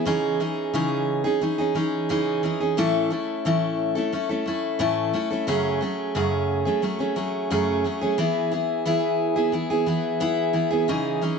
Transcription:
0.05 C#3 E3 C#4 D#4 G#4
0.40 E3 C#4 D#4 G#4
0.74 C#3 E3 C#4 D#4 G#4
1.24 C#4 D#4 G#4
1.41 E3 C#4 D#4 G#4
1.58 C#4 D#4 G#4
1.75 E3 C#4 D#4 G#4
2.09 C#3 E3 C#4 D#4 G#4
2.43 E3 C#4 D#4 G#4
2.60 C#4 D#4 G#4
2.77 A2 E3 A3 C#4 E4 A4
3.10 A3 C#4 E4 A4
3.45 A2 E3 A3 C#4 E4 A4
3.95 A3 C#4 E4 A4
4.13 A3 C#4 E4 A4
4.29 A3 C#4 E4 A4
4.46 A3 C#4 E4 A4
4.79 A2 E3 A3 C#4 E4 A4
5.13 A3 C#4 E4 A4
5.30 A3 C#4 E4 A4
5.47 F#2 C#3 F#3 A3 C#4 G#4
5.81 F#3 A3 C#4 G#4
6.15 F#2 C#3 F#3 A3 C#4 G#4
6.65 F#3 A3 C#4 G#4
6.82 F#3 A3 C#4 G#4
6.99 F#3 A3 C#4 G#4
7.16 F#3 A3 C#4 G#4
7.50 F#2 C#3 F#3 A3 C#4 G#4
7.84 F#3 A3 C#4 G#4
8.01 F#3 A3 C#4 G#4
8.18 E3 B3 E4 G#4
8.52 E3 B3 E4 G#4
8.85 E3 B3 E4 G#4
9.36 B3 E4 G#4
9.52 E3 B3 E4 G#4
9.70 B3 E4 G#4
9.86 E3 B3 E4 G#4
10.20 E3 B3 E4 G#4
10.53 E3 B3 E4 G#4
10.71 B3 E4 G#4
10.88 C#3 E3 C#4 D#4 G#4
11.22 E3 C#4 D#4 G#4

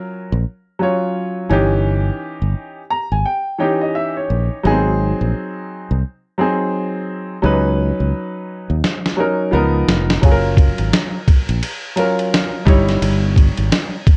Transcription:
Already playing: F#3 C#4 F4 A#4
0.32 A#1
0.79 F#3 C#4 F4 C#5
1.49 G1 E3 C#4 D#4 G4
2.42 G1
2.90 A#5
3.12 G#1 G#5
3.26 G5
3.58 E3 C#4 D#4 G4 G5
3.81 D#5
3.95 E5
4.17 C#5
4.30 A#1
4.63 G#1 F#3 B3 D#4 G#4
4.71 C4
5.21 A#1
5.91 C2
6.38 F#3 C4 D#4 G#4
7.42 C#2 F#3 C#4 D#4 B4
8.00 C#2
8.70 D#2
8.84 snare
9.06 snare
9.17 F#3 C#4 D#4 A#4
9.51 C#2 F3 B3 D#4 A#4
9.88 F1, snare
10.10 snare
10.21 F#1 F#3 C#4 F4 G#4, kick, ride
10.31 A#4
10.57 kick, ride
10.78 G#1, ride
10.93 snare, hi-hat pedal, ride
11.28 kick, ride
11.49 A#1, ride
11.63 ride
11.96 F#3 C#4 F4 A#4, ride
12.19 ride
12.34 snare, hi-hat pedal, ride
12.65 G1 G3 D#4 E4 C#5, kick, ride
12.89 snare, ride
13.02 G1, ride
13.36 kick, ride
13.57 G#1, ride
13.72 snare, hi-hat pedal, ride
14.07 kick, ride

